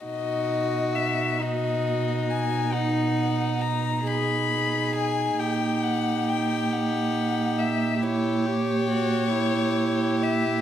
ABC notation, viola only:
X:1
M:12/8
L:1/8
Q:3/8=45
K:B
V:1 name="Viola"
D3 F3 D3 D3- | D6 E =G F E3 |]